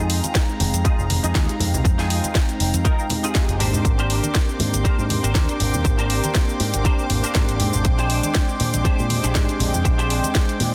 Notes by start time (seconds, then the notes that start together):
Already playing: F2 G#3 C4 D#4 F5 G5 A#5
0.00 D#4 F4 G#4
0.10 open hi-hat
0.24 closed hi-hat, muted conga, high conga, shaker
0.35 kick, snare, closed hi-hat, shaker
0.49 shaker
0.60 F1, open hi-hat, high conga
0.73 F2, closed hi-hat, muted conga, high conga, shaker
0.84 D#4 F4 G#4, muted picked electric bass stroke, kick, closed hi-hat, shaker
0.99 F1, shaker
1.09 G#3 C4 D#4 G4, open hi-hat, high conga, low conga
1.23 F2 D#4 F4 G#4, closed hi-hat, shaker
1.34 D#2 G#3 C4 D#4 G4, kick, snare, closed hi-hat, shaker
1.48 G#3 C4 D#4 G4, closed hi-hat, shaker
1.59 F2 G#3 C4 D#4 G5, open hi-hat, low conga
1.74 C2, low conga, shaker
1.84 F2, muted clean electric guitar stroke, kick, closed hi-hat, shaker
1.98 D#4 F4 G#4, snare, closed hi-hat, shaker
2.10 open hi-hat
2.24 closed hi-hat, muted conga, high conga, shaker
2.35 kick, snare, closed hi-hat, shaker
2.49 closed hi-hat, shaker
2.60 F1, open hi-hat
2.74 F2, closed hi-hat, muted conga, high conga, shaker
2.84 D#4 F4 A#4, kick, closed hi-hat, shaker
2.99 shaker
3.09 G#3 C4 D#4 G4, open hi-hat, muted conga, low conga
3.23 D#4 F4 G#4, closed hi-hat, shaker
3.35 G#3 C4 D#4 G4, kick, snare, closed hi-hat, shaker
3.48 F1 G#3 C4 D#4 G4, closed hi-hat, shaker
3.59 G#1 A#3 C4 D4 G4 A#4 C5 G5 C6 D6, open hi-hat, low conga
3.73 G#2, low conga, shaker
3.85 G#1, kick, closed hi-hat, shaker
3.98 D4 G4 A#4 C5, closed hi-hat, shaker
4.10 open hi-hat
4.23 closed hi-hat, muted conga, high conga, shaker
4.35 kick, snare, closed hi-hat, shaker
4.49 shaker
4.59 G#2, open hi-hat, high conga
4.74 G#1, closed hi-hat, muted conga, high conga, shaker
4.84 D4 G4 A#4 C5, kick, closed hi-hat, shaker
4.99 G#2, shaker
5.09 A#3 C4 D4 G4, open hi-hat, high conga, low conga
5.23 G#1 D4 G4 A#4 C5, closed hi-hat, shaker
5.34 D#2 A#3 C4 D4 G4, kick, snare, closed hi-hat, shaker
5.48 A#3 C4 D4 G4, closed hi-hat, shaker
5.59 G#1 A#3 C4 D4 G4, open hi-hat, low conga
5.74 D#2, low conga, shaker
5.84 G#1, muted clean electric guitar stroke, kick, closed hi-hat, shaker
5.98 D4 G4 A#4 C5, closed hi-hat, shaker
6.10 open hi-hat
6.24 closed hi-hat, muted conga, high conga, shaker
6.35 kick, snare, closed hi-hat, shaker
6.49 shaker
6.60 G#2, open hi-hat
6.74 G#1, closed hi-hat, muted conga, high conga, shaker
6.84 D4 G4 A#4 C5, kick, closed hi-hat, shaker
6.99 shaker
7.09 G#1 A#3 C4 D4 G4, open hi-hat, muted conga, low conga
7.23 D4 G4 A#4 C5, muted picked electric bass stroke, closed hi-hat, shaker
7.34 G#2 A#3 C4 D4 G4, kick, snare, closed hi-hat, shaker
7.48 G#1 A#3 C4 D4 G4, closed hi-hat, shaker
7.59 G#2 G#3 C4 D4 G5, open hi-hat, low conga
7.73 G#1, low conga, shaker
7.84 A#1 G#3 G5, muted clean electric guitar stroke, kick, closed hi-hat, shaker
7.98 D4 G4 G#4 C5, closed hi-hat, shaker
8.10 open hi-hat
8.23 closed hi-hat, muted conga, high conga, shaker
8.35 kick, snare, closed hi-hat, shaker
8.49 shaker
8.60 A#2, open hi-hat, high conga
8.74 A#1, closed hi-hat, muted conga, high conga, shaker
8.84 D4 G4 G#4 C5, muted picked electric bass stroke, kick, closed hi-hat, shaker
8.99 A#2, shaker
9.09 G#3 C4 D4 G4, open hi-hat, high conga, low conga
9.23 A#1 D4 G4 G#4 C5, closed hi-hat, shaker
9.34 G#2 G#3 C4 D4 G4, kick, snare, closed hi-hat, shaker
9.48 G#3 C4 D4 G4, closed hi-hat, shaker
9.59 A#1 G#3 C4 D4 G5, open hi-hat, low conga
9.74 F2, low conga, shaker
9.84 A#1, muted clean electric guitar stroke, kick, closed hi-hat, shaker
9.98 D4 G4 G#4 C5, closed hi-hat, shaker
10.10 open hi-hat
10.23 closed hi-hat, muted conga, high conga, shaker
10.35 kick, snare, closed hi-hat, shaker
10.49 closed hi-hat, shaker
10.60 A#2, open hi-hat, high conga